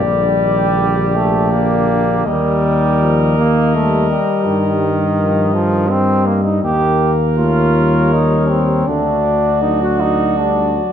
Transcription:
0.00 2.25 A#1 medium
0.00 0.39 D3 medium
0.00 1.17 G3 medium
0.00 2.21 G4 medium
0.00 2.27 D5 medium
0.39 0.76 D#3 medium
0.77 1.14 D3 medium
1.15 1.52 C3 medium
1.15 1.53 A3 medium
1.51 1.88 D3 medium
1.51 2.28 A#3 medium
1.90 2.25 D3 medium
2.25 4.15 D#2 medium
2.25 2.99 D#3 medium
2.25 3.37 G3 medium
2.25 6.32 A#4 medium
2.25 7.10 D#5 medium
3.01 3.36 F3 medium
3.37 3.73 D#3 medium
3.37 3.77 A#3 medium
3.74 5.01 G3 medium
3.74 4.09 A3 medium
4.10 4.48 G3 medium
4.46 6.59 G2 medium
4.46 5.55 D#3 medium
5.18 5.53 F3 medium
5.54 5.90 D#3 medium
5.54 5.91 F3 medium
5.90 6.64 G3 medium
5.90 6.28 C4 medium
6.27 6.44 A#3 medium
6.44 6.63 D#4 medium
6.63 8.83 D#2 medium
6.63 7.37 A#3 medium
6.63 7.11 G4 medium
6.63 8.83 A#4 medium
7.38 7.75 A3 medium
7.38 8.14 F4 medium
7.38 8.89 C#5 medium
7.76 8.11 G3 medium
8.12 8.86 G3 medium
8.12 8.49 D#4 medium
8.48 8.89 C4 medium
8.87 10.80 D2 medium
8.87 9.61 A3 medium
8.87 9.63 D4 medium
8.87 10.92 F#4 medium
8.87 10.92 D5 medium
9.61 10.37 F#3 medium
9.61 9.80 D#4 medium
9.82 10.02 F#4 medium
10.01 10.39 D#4 medium
10.37 10.74 G3 medium
10.37 10.74 D4 medium
10.74 10.92 F#3 medium

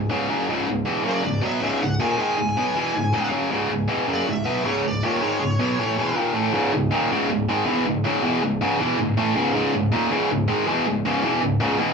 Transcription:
0.10 0.29 C#2 medium
0.10 0.30 G#2 medium
0.10 0.29 C#3 medium
0.30 0.49 F#2 medium
0.30 0.48 C#3 medium
0.30 0.49 F#3 medium
0.49 0.67 C#2 medium
0.49 0.67 G#2 medium
0.49 0.68 C#3 medium
0.68 0.84 C#2 medium
0.68 0.84 G#2 medium
0.85 1.04 E2 medium
0.85 1.05 B2 medium
0.85 1.05 E3 medium
1.05 1.24 F#2 medium
1.05 1.24 C#3 medium
1.05 1.25 F#3 medium
1.09 1.47 D5 medium
1.24 1.40 C#2 medium
1.24 1.40 G#2 medium
1.41 1.61 B2 medium
1.41 1.62 F#3 medium
1.41 1.62 B3 medium
1.47 1.64 E5 medium
1.61 1.81 C#2 medium
1.61 1.80 G#2 medium
1.61 1.82 C#3 loud
1.61 1.84 E5 medium
1.81 1.97 C#2 medium
1.81 1.97 G#2 medium
1.81 2.00 F#5 medium
2.00 2.18 D#2 medium
2.00 2.18 A#2 medium
2.00 2.18 D#3 loud
2.00 2.19 G#5 loud
2.18 2.37 G#2 medium
2.18 2.38 D#3 medium
2.18 2.38 G#3 medium
2.18 3.30 G#5 medium
2.37 2.54 C#2 medium
2.37 2.54 G#2 medium
2.57 2.75 B2 medium
2.57 2.76 F#3 medium
2.57 2.76 B3 medium
2.75 2.95 E2 medium
2.75 2.95 B2 medium
2.75 2.95 E3 loud
2.96 3.11 C#2 medium
2.96 3.12 G#2 medium
3.13 3.31 C#2 medium
3.13 3.32 G#2 medium
3.13 3.31 C#3 medium
3.31 3.50 F#2 medium
3.31 3.50 C#3 medium
3.31 3.51 F#3 medium
3.50 3.68 C#2 medium
3.50 3.68 G#2 medium
3.50 3.71 C#3 loud
3.69 3.86 C#2 medium
3.69 3.86 G#2 medium
3.88 4.07 E2 medium
3.88 4.08 B2 medium
3.88 4.08 E3 medium
4.08 4.27 F#2 medium
4.08 4.27 C#3 medium
4.08 4.28 F#3 medium
4.14 4.31 D5 medium
4.27 4.43 C#2 medium
4.27 4.44 G#2 medium
4.27 4.65 E5 medium
4.45 4.64 B2 medium
4.45 4.63 F#3 medium
4.45 4.64 B3 medium
4.64 4.83 C#2 medium
4.64 4.83 G#2 loud
4.64 4.84 C#3 medium
4.68 4.88 C#5 medium
4.84 5.00 C#2 medium
4.84 5.00 G#2 medium
4.84 5.05 D5 medium
5.03 5.21 D#2 medium
5.03 5.22 A#2 medium
5.03 5.21 D#3 medium
5.03 6.18 C#5 medium
5.22 5.40 G#2 medium
5.22 5.40 D#3 medium
5.22 5.41 G#3 medium
5.41 5.56 C#2 medium
5.41 5.57 G#2 medium
5.59 5.78 B2 medium
5.59 5.79 F#3 medium
5.59 5.79 B3 medium
5.79 5.97 A2 medium
5.79 5.97 E3 medium
5.79 5.98 A3 loud
5.97 6.15 E2 medium
5.97 6.16 B2 medium
5.97 6.16 E3 medium
6.15 6.33 D#2 medium
6.15 6.34 A#2 medium
6.15 6.34 D#3 loud
6.34 6.53 A2 medium
6.34 6.53 E3 medium
6.34 6.53 A3 medium
6.53 6.72 C#2 medium
6.53 6.72 G#2 loud
6.53 6.73 C#3 loud
6.73 6.89 C#2 medium
6.73 6.89 G#2 medium
6.91 7.10 D#2 medium
6.91 7.10 A#2 medium
6.91 7.10 D#3 loud
7.11 7.28 C#2 medium
7.11 7.28 G#2 medium
7.11 7.30 C#3 loud
7.30 7.45 C#2 medium
7.30 7.45 G#2 medium
7.49 7.65 G#2 loud
7.49 7.66 D#3 loud
7.49 7.66 G#3 loud
7.65 7.85 E2 loud
7.65 7.85 B2 loud
7.65 7.85 E3 loud
7.87 8.02 C#2 medium
7.87 8.02 G#2 medium
8.05 8.23 C#2 loud
8.05 8.23 G#2 loud
8.05 8.23 C#3 loud
8.23 8.42 E2 loud
8.23 8.42 B2 loud
8.23 8.42 E3 loud
8.43 8.58 C#2 medium
8.43 8.58 G#2 medium
8.61 8.79 C#2 medium
8.61 8.80 G#2 loud
8.61 8.80 C#3 loud
8.79 8.98 E2 loud
8.79 8.98 B2 loud
8.79 8.98 E3 loud
8.98 9.14 C#2 medium
8.98 9.14 G#2 medium
9.17 9.35 A2 loud
9.17 9.35 E3 loud
9.17 9.36 A3 loud
9.35 9.53 C#2 loud
9.35 9.53 G#2 loud
9.35 9.54 C#3 loud
9.54 9.73 C#2 loud
9.54 9.73 G#2 loud
9.54 9.73 C#3 loud
9.74 9.89 C#2 medium
9.74 9.89 G#2 medium
9.92 10.10 D#2 medium
9.92 10.10 A#2 loud
9.92 10.11 D#3 loud
10.11 10.29 C#2 medium
10.11 10.29 G#2 medium
10.11 10.30 C#3 loud
10.31 10.45 C#2 medium
10.31 10.45 G#2 medium
10.48 10.66 G#2 loud
10.48 10.67 D#3 loud
10.48 10.67 G#3 loud
10.67 10.85 E2 loud
10.67 10.85 B2 loud
10.67 10.86 E3 loud
10.87 11.01 C#2 medium
10.87 11.01 G#2 medium
11.05 11.23 C#2 loud
11.05 11.23 G#2 loud
11.05 11.24 C#3 loud
11.23 11.41 E2 medium
11.23 11.42 B2 medium
11.23 11.42 E3 loud
11.42 11.57 C#2 medium
11.42 11.57 G#2 medium
11.60 11.79 C#2 medium
11.60 11.79 G#2 medium
11.60 11.79 C#3 loud
11.79 11.94 E2 loud
11.79 11.94 B2 loud
11.79 11.94 E3 loud

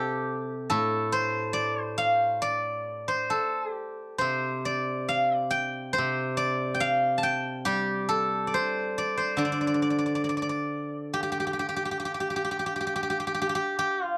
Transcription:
0.00 0.72 C3 soft
0.00 2.23 G4 medium
0.00 0.69 A4 medium
0.00 0.98 C5 medium
0.00 0.44 D5 medium
0.70 3.33 A2 soft
0.70 2.89 A4 medium
1.12 1.81 C5 medium
1.53 1.81 D5 medium
1.81 2.41 C5 medium
1.98 3.64 F5 medium
2.42 4.26 D5 medium
3.08 4.18 C5 medium
3.30 3.72 A4 medium
3.72 5.49 G4 medium
4.18 5.97 C3 soft
4.18 5.93 C5 medium
4.65 5.36 D5 medium
5.08 5.36 F5 medium
5.36 6.37 D5 medium
5.51 6.74 G5 medium
5.93 7.91 C5 medium
5.98 8.53 C3 soft
6.37 8.22 D5 medium
6.74 7.23 G5 medium
6.80 8.47 F5 medium
7.18 8.63 A5 medium
7.23 8.79 G5 medium
7.65 10.25 G3 soft
7.65 10.01 G4 medium
8.09 10.28 A4 medium
8.47 8.98 D5 soft
8.54 9.17 C5 medium
8.98 9.38 D5 medium
9.17 11.16 C5 medium
9.37 12.02 D3 soft
9.37 9.44 D5 medium
9.45 9.52 D5 soft
9.52 9.60 D5 soft
9.61 9.67 D5 soft
9.67 9.74 D5 soft
9.74 9.82 D5 soft
9.82 9.90 D5 soft
9.90 9.98 D5 soft
9.98 10.05 D5 soft
10.06 10.15 D5 soft
10.15 10.24 D5 soft
10.24 10.29 D5 soft
10.29 10.37 D5 soft
10.37 10.42 D5 soft
10.42 10.49 D5 soft
10.49 12.34 D5 soft
11.14 11.22 G4 medium
11.23 11.31 G4 soft
11.32 11.39 G4 soft
11.40 11.46 G4 soft
11.47 11.53 G4 soft
11.53 11.59 G4 soft
11.59 11.68 G4 soft
11.69 11.76 G4 soft
11.76 11.85 G4 soft
11.85 11.91 G4 soft
11.91 11.99 G4 soft
12.00 12.05 G4 soft
12.05 12.14 G4 soft
12.14 12.20 G4 soft
12.20 12.30 G4 soft
12.30 12.36 G4 soft
12.36 12.44 G4 soft
12.44 12.51 G4 soft
12.51 12.59 G4 soft
12.59 12.66 G4 soft
12.66 12.75 G4 soft
12.76 12.80 G4 soft
12.81 12.86 G4 soft
12.87 12.95 G4 soft
12.96 13.02 G4 medium
13.03 13.09 G4 soft
13.10 13.19 G4 medium
13.20 13.27 G4 soft
13.27 13.34 G4 medium
13.34 13.41 G4 soft
13.42 13.49 G4 medium
13.49 13.55 G4 medium
13.55 13.78 G4 medium
13.79 14.04 G4 medium
14.04 14.18 F4 medium

